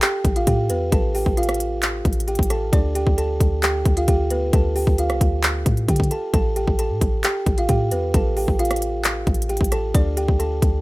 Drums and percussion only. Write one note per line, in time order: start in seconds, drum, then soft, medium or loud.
0.02 clap loud
0.02 closed hi-hat medium
0.25 kick loud
0.25 closed hi-hat medium
0.36 closed hi-hat medium
0.47 kick medium
0.47 closed hi-hat loud
0.70 closed hi-hat medium
0.92 kick loud
0.92 closed hi-hat medium
1.15 open hi-hat medium
1.26 kick medium
1.37 closed hi-hat medium
1.43 closed hi-hat medium
1.49 cross-stick loud
1.49 closed hi-hat medium
1.54 closed hi-hat medium
1.60 closed hi-hat medium
1.82 clap loud
1.82 closed hi-hat medium
2.05 kick loud
2.05 closed hi-hat soft
2.13 closed hi-hat medium
2.20 closed hi-hat medium
2.28 closed hi-hat medium
2.35 kick medium
2.35 closed hi-hat medium
2.43 closed hi-hat medium
2.50 cross-stick medium
2.50 closed hi-hat medium
2.73 kick loud
2.73 closed hi-hat medium
2.95 closed hi-hat medium
3.07 kick medium
3.18 closed hi-hat medium
3.40 kick loud
3.40 closed hi-hat medium
3.63 clap loud
3.63 closed hi-hat medium
3.85 kick loud
3.85 closed hi-hat medium
3.97 closed hi-hat medium
4.08 kick medium
4.08 closed hi-hat medium
4.30 closed hi-hat medium
4.53 kick loud
4.53 closed hi-hat medium
4.76 open hi-hat medium
4.87 kick medium
4.98 closed hi-hat medium
5.10 cross-stick medium
5.10 closed hi-hat soft
5.21 kick loud
5.21 closed hi-hat medium
5.43 clap loud
5.43 closed hi-hat medium
5.66 kick loud
5.66 closed hi-hat medium
5.77 closed hi-hat soft
5.88 kick medium
5.88 closed hi-hat medium
5.96 kick medium
5.96 closed hi-hat medium
6.04 closed hi-hat medium
6.11 closed hi-hat medium
6.34 kick loud
6.34 closed hi-hat medium
6.56 closed hi-hat medium
6.67 kick medium
6.79 closed hi-hat medium
7.01 kick loud
7.01 closed hi-hat medium
7.24 clap loud
7.24 closed hi-hat medium
7.46 kick loud
7.46 closed hi-hat medium
7.58 closed hi-hat medium
7.69 kick medium
7.69 closed hi-hat medium
7.91 closed hi-hat medium
8.14 kick loud
8.14 closed hi-hat medium
8.37 open hi-hat medium
8.48 kick medium
8.59 closed hi-hat medium
8.65 closed hi-hat medium
8.71 cross-stick loud
8.71 closed hi-hat medium
8.76 closed hi-hat medium
8.82 closed hi-hat medium
9.04 clap loud
9.04 closed hi-hat medium
9.27 kick loud
9.27 closed hi-hat soft
9.34 closed hi-hat medium
9.42 closed hi-hat medium
9.49 closed hi-hat medium
9.57 kick medium
9.57 closed hi-hat medium
9.64 closed hi-hat medium
9.72 cross-stick medium
9.72 closed hi-hat medium
9.95 kick loud
9.95 closed hi-hat medium
10.17 closed hi-hat medium
10.28 kick medium
10.40 closed hi-hat medium
10.62 kick loud
10.62 closed hi-hat medium